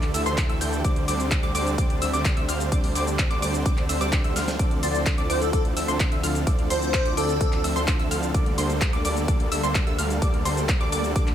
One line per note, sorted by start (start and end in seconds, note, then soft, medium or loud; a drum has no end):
0.00 0.12 D2 loud
0.00 0.81 D3 medium
0.00 0.11 E3 medium
0.00 0.11 A3 medium
0.00 0.11 D4 medium
0.00 0.80 D4 medium
0.00 0.81 E4 medium
0.00 4.55 G4 medium
0.00 0.11 A4 medium
0.00 0.11 D5 medium
0.00 0.81 E5 medium
0.00 0.11 D6 medium
0.00 clap soft
0.00 closed hi-hat soft
0.14 0.24 D2 medium
0.14 0.24 E3 medium
0.14 0.24 A3 medium
0.14 0.24 D4 medium
0.14 0.24 A4 medium
0.14 0.24 E5 medium
0.14 0.24 E6 medium
0.14 open hi-hat loud
0.14 cabasa medium
0.26 0.47 D2 loud
0.26 0.46 E3 loud
0.26 0.46 A3 medium
0.26 0.46 D4 medium
0.26 0.46 A4 medium
0.26 0.46 C5 loud
0.26 0.46 C6 loud
0.26 closed hi-hat soft
0.26 cabasa soft
0.38 kick loud
0.38 clap loud
0.38 closed hi-hat medium
0.38 cabasa soft
0.49 0.59 D2 medium
0.49 0.58 E3 medium
0.49 0.58 A3 medium
0.49 0.58 D4 medium
0.49 0.58 A4 medium
0.49 0.58 E5 medium
0.49 0.58 E6 medium
0.49 closed hi-hat soft
0.61 0.82 D2 loud
0.61 0.81 E3 medium
0.61 0.81 A3 medium
0.61 0.81 D4 medium
0.61 0.81 A4 medium
0.61 0.81 G5 medium
0.61 0.81 G6 medium
0.61 open hi-hat loud
0.61 cabasa medium
0.73 closed hi-hat soft
0.73 cabasa soft
0.84 1.06 D2 loud
0.84 1.05 G3 medium
0.84 1.05 C4 medium
0.84 1.05 D4 medium
0.84 11.35 D4 medium
0.84 1.05 C5 medium
0.84 8.31 C5 medium
0.84 1.05 D5 loud
0.84 1.05 D6 loud
0.84 kick loud
0.84 closed hi-hat medium
0.84 cabasa soft
0.96 closed hi-hat soft
1.08 1.41 D2 loud
1.08 1.40 G3 medium
1.08 1.40 C4 medium
1.08 1.40 D4 medium
1.08 1.40 C5 medium
1.08 1.40 D5 medium
1.08 1.40 D6 medium
1.08 open hi-hat loud
1.08 cabasa medium
1.20 closed hi-hat soft
1.20 cabasa soft
1.31 kick loud
1.31 clap loud
1.31 closed hi-hat loud
1.31 cabasa soft
1.43 1.52 D2 medium
1.43 1.52 G3 medium
1.43 1.52 C4 medium
1.43 1.52 D4 medium
1.43 1.52 C5 medium
1.43 1.52 D5 loud
1.43 1.52 D6 loud
1.43 closed hi-hat soft
1.55 1.76 D2 loud
1.55 1.75 G3 loud
1.55 1.75 C4 medium
1.55 1.75 D4 medium
1.55 1.75 C5 medium
1.55 1.75 D5 loud
1.55 1.75 D6 loud
1.55 open hi-hat loud
1.55 cabasa medium
1.67 closed hi-hat soft
1.67 cabasa soft
1.78 1.99 D2 loud
1.78 1.99 G3 medium
1.78 1.99 C4 medium
1.78 1.99 D4 medium
1.78 1.99 C5 medium
1.78 1.99 D5 medium
1.78 1.99 D6 loud
1.78 kick loud
1.78 closed hi-hat medium
1.78 cabasa soft
1.90 closed hi-hat soft
2.02 2.11 D2 loud
2.02 2.12 G3 medium
2.02 2.12 C4 medium
2.02 2.12 D4 medium
2.02 2.12 C5 medium
2.02 2.12 E5 medium
2.02 2.12 E6 medium
2.02 open hi-hat loud
2.02 cabasa medium
2.13 2.34 D2 loud
2.13 2.33 G3 loud
2.13 2.33 C4 medium
2.13 2.33 D4 medium
2.13 2.33 C5 medium
2.13 2.33 D5 loud
2.13 2.33 D6 loud
2.13 closed hi-hat soft
2.13 cabasa soft
2.25 kick loud
2.25 clap loud
2.25 closed hi-hat medium
2.25 cabasa soft
2.37 2.46 D2 medium
2.37 2.46 G3 medium
2.37 2.46 C4 medium
2.37 2.46 D4 medium
2.37 2.46 C5 medium
2.37 2.46 E5 medium
2.37 2.46 E6 medium
2.37 closed hi-hat soft
2.48 2.70 D2 loud
2.48 2.68 G3 medium
2.48 2.68 C4 medium
2.48 2.68 D4 medium
2.48 2.68 C5 medium
2.48 2.68 F5 medium
2.48 2.69 F6 medium
2.48 open hi-hat loud
2.48 cabasa medium
2.60 closed hi-hat soft
2.60 cabasa soft
2.72 2.93 D2 loud
2.72 2.93 G3 medium
2.72 2.93 C4 medium
2.72 2.93 D4 medium
2.72 2.93 C5 medium
2.72 2.93 D6 loud
2.72 kick loud
2.72 closed hi-hat loud
2.72 cabasa soft
2.84 open hi-hat medium
2.95 3.28 D2 medium
2.95 3.28 G3 medium
2.95 3.28 C4 medium
2.95 3.28 D4 medium
2.95 3.28 C5 medium
2.95 3.28 D5 medium
2.95 3.28 D6 medium
2.95 open hi-hat loud
2.95 cabasa medium
3.07 closed hi-hat soft
3.07 cabasa soft
3.19 kick loud
3.19 clap loud
3.19 closed hi-hat loud
3.19 cabasa soft
3.30 3.40 D2 medium
3.30 3.39 G3 medium
3.30 3.39 C4 medium
3.30 3.39 D4 medium
3.30 3.39 C5 medium
3.30 3.39 D5 loud
3.30 3.39 D6 medium
3.30 closed hi-hat soft
3.42 3.63 D2 loud
3.42 3.63 G3 medium
3.42 3.63 C4 medium
3.42 3.63 D4 medium
3.42 3.63 C5 medium
3.42 3.63 D5 loud
3.42 3.63 D6 loud
3.42 open hi-hat loud
3.42 cabasa medium
3.54 closed hi-hat soft
3.54 cabasa soft
3.65 3.87 D2 loud
3.65 3.86 G3 medium
3.65 3.86 C4 medium
3.65 3.86 D4 medium
3.65 3.86 C5 medium
3.65 3.86 D5 loud
3.65 3.86 D6 loud
3.65 kick loud
3.65 closed hi-hat loud
3.65 cabasa soft
3.77 clap soft
3.77 closed hi-hat soft
3.89 3.98 D2 loud
3.89 3.99 G3 medium
3.89 3.99 C4 medium
3.89 3.99 D4 medium
3.89 3.99 C5 medium
3.89 3.99 E5 medium
3.89 3.99 E6 medium
3.89 open hi-hat loud
3.89 cabasa medium
4.01 4.22 D2 loud
4.01 4.21 G3 loud
4.01 4.21 C4 medium
4.01 4.21 D4 medium
4.01 4.21 C5 medium
4.01 4.21 D5 loud
4.01 4.21 D6 loud
4.01 closed hi-hat soft
4.01 cabasa soft
4.12 kick loud
4.12 clap loud
4.12 closed hi-hat loud
4.12 cabasa soft
4.24 4.34 D2 loud
4.24 4.33 G3 medium
4.24 4.33 C4 medium
4.24 4.33 D4 medium
4.24 4.33 C5 medium
4.24 4.33 E5 medium
4.24 4.33 E6 medium
4.24 closed hi-hat soft
4.36 4.57 D2 loud
4.36 4.56 G3 medium
4.36 4.56 C4 medium
4.36 4.56 D4 medium
4.36 4.56 C5 medium
4.36 4.56 F5 medium
4.36 4.56 F6 medium
4.36 snare medium
4.36 open hi-hat loud
4.36 cabasa medium
4.48 snare medium
4.48 closed hi-hat soft
4.48 cabasa soft
4.59 4.81 D2 loud
4.59 11.35 D3 medium
4.59 4.80 F3 medium
4.59 4.80 C4 medium
4.59 4.80 D4 medium
4.59 8.31 E4 medium
4.59 8.31 F4 medium
4.59 4.80 A4 medium
4.59 4.80 D5 loud
4.59 4.80 D6 loud
4.59 kick loud
4.59 closed hi-hat loud
4.59 cabasa soft
4.71 closed hi-hat soft
4.83 5.16 D2 medium
4.83 5.15 F3 medium
4.83 5.15 C4 medium
4.83 5.15 D4 medium
4.83 5.15 A4 medium
4.83 5.15 C5 medium
4.83 4.99 D5 medium
4.83 5.15 C6 medium
4.83 open hi-hat loud
4.83 cabasa medium
4.95 closed hi-hat soft
4.95 cabasa soft
5.06 kick loud
5.06 clap loud
5.06 closed hi-hat loud
5.06 cabasa soft
5.18 5.27 D2 medium
5.18 5.27 F3 medium
5.18 5.27 C4 medium
5.18 5.27 D4 medium
5.18 5.27 A4 medium
5.18 5.27 D5 medium
5.18 5.27 D6 loud
5.18 closed hi-hat soft
5.30 5.51 D2 loud
5.30 5.50 F3 medium
5.30 5.50 C4 medium
5.30 5.50 D4 medium
5.30 5.50 A4 medium
5.30 5.39 C5 medium
5.30 5.50 D5 loud
5.30 5.50 D6 loud
5.30 open hi-hat loud
5.30 cabasa medium
5.41 5.49 A4 medium
5.41 closed hi-hat soft
5.41 cabasa soft
5.53 5.74 D2 loud
5.53 5.74 F3 medium
5.53 5.74 C4 medium
5.53 5.61 A4 medium
5.53 5.74 D6 medium
5.53 kick loud
5.53 closed hi-hat loud
5.53 cabasa soft
5.65 closed hi-hat soft
5.77 5.86 D2 loud
5.77 5.87 F3 medium
5.77 5.87 C4 medium
5.77 5.87 D4 medium
5.77 5.87 A4 medium
5.77 5.87 E5 medium
5.77 5.87 E6 medium
5.77 open hi-hat loud
5.77 cabasa medium
5.88 6.09 D2 loud
5.88 6.08 F3 loud
5.88 6.08 C4 medium
5.88 6.08 D4 medium
5.88 6.08 A4 medium
5.88 6.08 C5 loud
5.88 6.08 C6 loud
5.88 closed hi-hat soft
5.88 cabasa soft
6.00 kick loud
6.00 clap loud
6.00 closed hi-hat loud
6.00 cabasa soft
6.12 6.21 D2 medium
6.12 6.21 F3 medium
6.12 6.21 C4 medium
6.12 6.21 D4 medium
6.12 6.21 A4 medium
6.12 6.21 E5 medium
6.12 6.21 E6 medium
6.12 closed hi-hat soft
6.23 6.45 D2 loud
6.23 6.43 F3 medium
6.23 6.43 C4 medium
6.23 6.43 D4 medium
6.23 6.43 A4 medium
6.23 6.43 F5 medium
6.23 6.43 F6 medium
6.23 open hi-hat loud
6.23 cabasa medium
6.35 closed hi-hat soft
6.35 cabasa soft
6.47 6.68 D2 loud
6.47 6.68 F3 medium
6.47 6.68 C4 medium
6.47 6.68 D4 medium
6.47 6.68 A4 medium
6.47 6.68 D5 loud
6.47 6.68 D6 loud
6.47 kick loud
6.47 closed hi-hat medium
6.47 cabasa soft
6.59 closed hi-hat soft
6.70 7.03 D2 medium
6.70 7.03 F3 medium
6.70 7.03 C4 medium
6.70 7.03 D4 medium
6.70 7.03 A4 medium
6.70 7.03 C5 medium
6.70 7.15 C5 loud
6.70 7.03 C6 medium
6.70 open hi-hat loud
6.70 cabasa medium
6.82 closed hi-hat soft
6.82 cabasa soft
6.94 kick loud
6.94 clap loud
6.94 closed hi-hat medium
6.94 cabasa soft
7.05 7.15 D2 loud
7.05 7.14 F3 medium
7.05 7.14 C4 medium
7.05 7.14 D4 medium
7.05 7.14 A4 medium
7.05 7.14 D5 loud
7.05 7.14 D6 loud
7.05 closed hi-hat soft
7.17 7.38 D2 loud
7.17 7.38 F3 loud
7.17 7.38 C4 medium
7.17 7.38 D4 medium
7.17 7.38 A4 medium
7.17 7.64 A4 medium
7.17 7.38 D5 loud
7.17 7.38 D6 loud
7.17 open hi-hat loud
7.17 cabasa medium
7.29 closed hi-hat soft
7.29 cabasa soft
7.41 7.62 D2 loud
7.41 7.61 F3 medium
7.41 7.61 C4 medium
7.41 7.61 D4 medium
7.41 7.61 D5 loud
7.41 7.61 D6 medium
7.41 kick loud
7.41 closed hi-hat medium
7.41 cabasa soft
7.52 clap soft
7.52 closed hi-hat soft
7.64 7.74 D2 loud
7.64 7.74 F3 medium
7.64 7.74 C4 medium
7.64 7.74 D4 medium
7.64 7.74 A4 medium
7.64 7.74 E5 medium
7.64 7.74 E6 medium
7.64 open hi-hat loud
7.64 cabasa medium
7.76 7.97 D2 loud
7.76 7.96 F3 loud
7.76 7.96 C4 medium
7.76 7.96 D4 medium
7.76 7.96 A4 medium
7.76 7.96 C5 loud
7.76 7.96 C6 loud
7.76 closed hi-hat soft
7.76 cabasa soft
7.88 kick loud
7.88 clap loud
7.88 closed hi-hat medium
7.88 cabasa soft
7.99 8.09 D2 medium
7.99 8.08 F3 medium
7.99 8.08 C4 medium
7.99 8.08 D4 medium
7.99 8.08 A4 medium
7.99 8.08 E5 medium
7.99 8.08 E6 medium
7.99 closed hi-hat soft
8.11 8.32 D2 loud
8.11 8.31 F3 medium
8.11 8.31 C4 medium
8.11 8.31 D4 medium
8.11 8.31 A4 medium
8.11 8.31 F5 medium
8.11 8.31 F6 medium
8.11 open hi-hat loud
8.11 cabasa medium
8.23 closed hi-hat soft
8.23 cabasa soft
8.34 8.56 D2 loud
8.34 8.55 G3 medium
8.34 8.55 A#3 medium
8.34 11.35 A#3 medium
8.34 8.55 D4 medium
8.34 11.35 G4 medium
8.34 11.35 A4 medium
8.34 8.55 A4 medium
8.34 8.55 D5 loud
8.34 8.55 D6 loud
8.34 kick loud
8.34 closed hi-hat medium
8.34 cabasa soft
8.46 closed hi-hat soft
8.58 8.91 D2 loud
8.58 8.90 G3 medium
8.58 8.90 A#3 medium
8.58 8.90 D4 medium
8.58 8.90 A4 medium
8.58 8.90 C5 medium
8.58 8.90 C6 medium
8.58 open hi-hat loud
8.58 cabasa medium
8.70 closed hi-hat soft
8.70 cabasa soft
8.81 kick loud
8.81 clap loud
8.81 closed hi-hat medium
8.81 cabasa soft
8.93 9.02 D2 loud
8.93 9.02 G3 medium
8.93 9.02 A#3 medium
8.93 9.02 D4 medium
8.93 9.02 A4 medium
8.93 9.02 D5 medium
8.93 9.02 D6 loud
8.93 closed hi-hat soft
9.05 9.26 D2 loud
9.05 9.25 G3 loud
9.05 9.25 A#3 medium
9.05 9.25 D4 medium
9.05 9.25 A4 medium
9.05 9.25 D5 loud
9.05 9.25 D6 loud
9.05 open hi-hat loud
9.05 cabasa medium
9.17 closed hi-hat soft
9.17 cabasa soft
9.28 9.49 D2 loud
9.28 9.49 G3 medium
9.28 9.49 A#3 medium
9.28 9.49 D4 medium
9.28 9.49 A4 medium
9.28 9.49 D5 loud
9.28 9.49 D6 loud
9.28 kick loud
9.28 closed hi-hat medium
9.28 cabasa soft
9.40 closed hi-hat soft
9.52 9.61 D2 loud
9.52 9.62 G3 medium
9.52 9.62 A#3 medium
9.52 9.62 D4 medium
9.52 9.62 A4 medium
9.52 9.62 E5 medium
9.52 9.62 E6 medium
9.52 open hi-hat loud
9.52 cabasa medium
9.63 9.84 D2 loud
9.63 9.83 G3 loud
9.63 9.83 A#3 medium
9.63 9.83 D4 medium
9.63 9.83 A4 medium
9.63 9.83 C5 loud
9.63 9.83 C6 loud
9.63 closed hi-hat soft
9.63 cabasa soft
9.75 kick loud
9.75 clap loud
9.75 closed hi-hat medium
9.75 cabasa soft
9.87 9.96 D2 medium
9.87 9.96 G3 medium
9.87 9.96 A#3 medium
9.87 9.96 D4 medium
9.87 9.96 A4 medium
9.87 9.96 E5 medium
9.87 9.96 E6 medium
9.87 closed hi-hat soft
9.98 10.20 D2 loud
9.98 10.18 G3 medium
9.98 10.18 A#3 medium
9.98 10.18 D4 medium
9.98 10.18 A4 medium
9.98 10.18 F5 medium
9.98 10.18 F6 medium
9.98 open hi-hat loud
9.98 cabasa medium
10.10 closed hi-hat soft
10.10 cabasa soft
10.22 10.43 D2 loud
10.22 10.43 G3 medium
10.22 10.43 A#3 medium
10.22 10.43 D4 medium
10.22 10.43 A4 medium
10.22 10.43 D5 loud
10.22 10.43 D6 loud
10.22 kick loud
10.22 closed hi-hat medium
10.22 cabasa soft
10.34 closed hi-hat soft
10.45 10.78 D2 loud
10.45 10.78 G3 medium
10.45 10.78 A#3 medium
10.45 10.78 D4 medium
10.45 10.78 A4 medium
10.45 10.78 C5 medium
10.45 10.78 C6 medium
10.45 open hi-hat loud
10.45 cabasa medium
10.57 closed hi-hat soft
10.57 cabasa soft
10.69 kick loud
10.69 clap loud
10.69 closed hi-hat medium
10.69 cabasa soft
10.81 10.90 D2 medium
10.81 10.89 G3 medium
10.81 10.89 A#3 medium
10.81 10.89 D4 medium
10.81 10.89 A4 medium
10.81 10.89 D5 medium
10.81 10.89 D6 loud
10.81 closed hi-hat soft
10.92 11.13 D2 loud
10.92 11.13 G3 loud
10.92 11.13 A#3 medium
10.92 11.13 D4 medium
10.92 11.13 A4 medium
10.92 11.13 D5 loud
10.92 11.13 D6 loud
10.92 open hi-hat loud
10.92 cabasa medium
11.04 closed hi-hat soft
11.04 cabasa soft
11.16 11.35 D2 loud
11.16 11.35 G3 medium
11.16 11.35 A#3 medium
11.16 11.35 A4 medium
11.16 11.35 D5 loud
11.16 11.35 D6 loud
11.16 kick loud
11.16 closed hi-hat medium
11.16 cabasa soft
11.27 clap soft
11.27 closed hi-hat soft